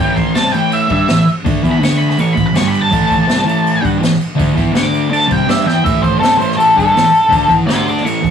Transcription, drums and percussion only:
0.17 kick, crash
0.35 snare, crash
0.54 crash
0.72 crash
0.89 kick, crash
1.08 snare, crash
1.27 crash
1.46 kick, crash
1.64 kick, crash
1.83 snare, crash
2.00 crash
2.10 snare
2.18 crash
2.37 kick, crash
2.55 snare, crash
2.74 crash
2.92 kick, crash
3.11 kick, crash
3.29 snare, crash
3.49 crash
3.66 crash
3.84 kick, crash
4.03 snare, crash
4.21 crash
4.39 kick, crash
4.57 kick, crash
4.75 snare, crash
4.94 crash
5.13 crash
5.30 kick, crash
5.49 snare, crash
5.69 snare
5.86 kick, crash
6.04 kick, crash
6.23 snare, crash
6.41 crash
6.52 snare
6.60 crash
6.78 kick, crash
6.97 snare, crash
7.15 crash
7.32 kick, crash
7.50 kick, crash
7.68 snare, crash
7.88 crash
7.98 snare
8.06 crash
8.24 kick, crash

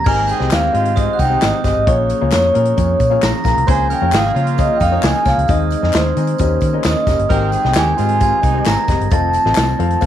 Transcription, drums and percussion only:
0.06 kick, crash, tambourine
0.28 closed hi-hat, tambourine
0.41 snare
0.51 snare, clap, closed hi-hat, tambourine
0.74 closed hi-hat
0.85 closed hi-hat
0.97 kick, closed hi-hat, tambourine
1.19 kick, closed hi-hat, tambourine
1.42 snare, clap, closed hi-hat, tambourine
1.64 kick, snare, closed hi-hat, tambourine
1.87 kick, closed hi-hat
2.09 closed hi-hat, tambourine
2.32 snare, clap, closed hi-hat, tambourine
2.55 closed hi-hat
2.65 closed hi-hat
2.77 kick, closed hi-hat, tambourine
3.00 kick, closed hi-hat, tambourine
3.22 snare, clap, closed hi-hat, tambourine
3.45 kick, snare, closed hi-hat, tambourine
3.58 closed hi-hat
3.68 kick, closed hi-hat
3.90 closed hi-hat, tambourine
4.12 snare, clap, closed hi-hat, tambourine
4.36 closed hi-hat
4.47 closed hi-hat
4.58 kick, closed hi-hat, tambourine
4.80 kick, closed hi-hat, tambourine
5.03 snare, clap, closed hi-hat, tambourine
5.25 kick, snare, closed hi-hat, tambourine
5.39 closed hi-hat
5.48 kick, closed hi-hat, tambourine
5.70 closed hi-hat, tambourine
5.83 snare
5.93 snare, clap, closed hi-hat, tambourine
6.17 closed hi-hat, tambourine
6.27 closed hi-hat
6.38 kick, closed hi-hat, tambourine
6.61 kick, closed hi-hat, tambourine
6.84 snare, clap, closed hi-hat, tambourine
7.07 kick, snare, closed hi-hat, tambourine
7.19 closed hi-hat
7.30 kick, closed hi-hat
7.52 closed hi-hat, tambourine
7.65 snare
7.75 snare, clap, closed hi-hat, tambourine
7.98 closed hi-hat, tambourine
8.09 closed hi-hat
8.20 kick, closed hi-hat, tambourine
8.43 kick, closed hi-hat, tambourine
8.66 snare, clap, closed hi-hat, tambourine
8.88 kick, snare, closed hi-hat, tambourine
9.01 closed hi-hat
9.11 kick, closed hi-hat, tambourine
9.33 closed hi-hat, tambourine
9.46 snare
9.55 snare, clap, closed hi-hat, tambourine
9.80 closed hi-hat
9.90 closed hi-hat
10.01 kick, closed hi-hat, tambourine

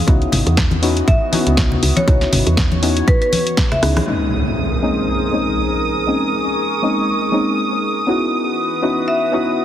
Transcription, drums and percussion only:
0.08 kick, closed hi-hat
0.22 closed hi-hat
0.32 open hi-hat, low conga
0.47 closed hi-hat
0.57 kick, snare, closed hi-hat
0.71 closed hi-hat, high conga
0.83 open hi-hat
0.97 closed hi-hat
1.08 kick, closed hi-hat
1.33 open hi-hat, high conga
1.47 closed hi-hat
1.57 kick, snare, closed hi-hat
1.72 low conga
1.83 open hi-hat
1.97 closed hi-hat, high conga
2.08 kick, closed hi-hat
2.21 snare, closed hi-hat
2.33 open hi-hat, low conga
2.47 closed hi-hat
2.57 kick, snare, closed hi-hat
2.72 closed hi-hat, high conga
2.83 open hi-hat
2.97 closed hi-hat
3.08 kick, closed hi-hat
3.22 closed hi-hat
3.32 open hi-hat, high conga
3.47 closed hi-hat
3.57 kick, snare, closed hi-hat
3.72 cross-stick, closed hi-hat, low conga
3.83 cross-stick, open hi-hat
3.97 cross-stick, open hi-hat, high conga

